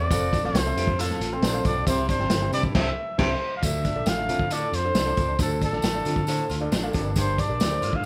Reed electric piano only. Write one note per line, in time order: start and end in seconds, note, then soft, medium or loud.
0.11 0.32 C4 medium
0.11 0.32 F4 medium
0.11 0.32 A4 medium
0.11 0.32 C5 medium
0.11 0.32 F5 medium
0.45 0.58 C4 medium
0.45 0.58 F4 medium
0.45 0.58 A4 medium
0.45 0.59 C5 medium
0.45 0.59 F5 medium
0.66 0.87 C4 medium
0.66 0.87 F4 medium
0.66 0.87 A4 medium
0.66 0.87 C5 medium
0.66 0.88 E5 medium
0.99 1.20 C4 medium
0.99 1.20 F4 medium
0.99 1.20 A4 medium
0.99 1.20 C5 medium
0.99 1.21 F5 medium
1.33 1.46 C4 medium
1.33 1.46 F4 medium
1.33 1.46 A4 medium
1.33 1.46 C5 medium
1.33 1.47 G5 medium
1.53 1.75 C4 medium
1.53 1.75 F4 medium
1.53 1.75 A4 medium
1.53 1.75 C5 medium
1.53 1.75 F5 medium
1.86 2.49 C3 medium
1.86 2.08 C4 medium
1.86 2.08 E4 medium
1.86 2.08 G4 medium
1.86 2.08 C5 medium
1.86 2.08 E5 medium
2.20 2.34 C4 medium
2.20 2.34 E4 medium
2.20 2.34 G4 medium
2.20 2.34 C5 medium
2.20 2.34 G5 medium
2.42 2.63 C4 medium
2.42 2.63 E4 medium
2.42 2.63 G4 medium
2.42 2.63 C5 medium
2.42 2.63 G5 medium
2.75 2.90 C4 medium
2.75 2.90 E4 medium
2.75 2.90 G4 medium
2.75 2.90 C5 medium
2.75 2.90 E5 medium
3.18 3.34 C4 loud
3.18 3.34 E4 loud
3.18 3.34 G4 loud
3.18 3.34 C5 medium
3.18 3.34 E5 loud
3.62 4.25 D3 medium
3.62 3.84 D4 medium
3.62 3.84 F4 medium
3.62 3.84 A4 medium
3.62 3.84 D5 medium
3.95 4.10 D4 medium
3.95 4.10 F4 medium
3.95 4.10 A4 medium
3.95 4.10 D5 medium
4.17 4.39 D4 medium
4.17 4.39 F4 medium
4.17 4.39 A4 medium
4.17 4.40 E5 medium
4.52 4.73 D4 medium
4.52 4.73 F4 medium
4.52 4.73 A4 medium
4.52 4.73 D5 medium
4.85 4.99 D4 medium
4.85 4.99 F4 medium
4.85 4.99 A4 medium
4.85 4.99 C5 medium
5.06 5.28 D4 medium
5.06 5.28 F4 medium
5.06 5.28 A4 medium
5.06 5.28 D5 medium
5.39 6.02 D3 medium
5.39 5.60 D4 medium
5.39 5.61 F4 medium
5.39 5.61 A4 medium
5.39 5.61 C5 medium
5.72 5.86 D4 medium
5.72 5.87 F4 medium
5.72 5.87 A4 medium
5.72 5.87 D5 medium
5.94 6.16 D4 medium
5.94 6.16 F4 medium
5.94 6.16 A4 medium
5.94 6.16 D5 medium
6.29 6.49 D4 medium
6.29 6.49 F4 medium
6.29 6.50 A4 medium
6.29 6.50 C5 medium
6.61 6.75 D4 medium
6.61 6.75 F4 medium
6.61 6.75 A4 medium
6.61 6.75 D5 loud
6.83 6.93 D4 medium
6.83 6.94 F4 medium
6.83 6.93 A4 medium
6.83 6.94 F5 medium
6.94 7.57 G2 medium
6.94 7.38 D4 medium
6.94 7.38 G4 medium
6.94 7.00 A4 medium
6.94 7.39 D5 loud
7.00 7.41 A#4 medium
7.48 7.63 D4 medium
7.48 7.63 G4 medium
7.48 7.63 A#4 medium
7.48 7.63 D5 medium
7.70 7.92 D4 medium
7.70 7.92 G4 medium
7.70 7.92 A#4 medium
7.70 7.92 C5 medium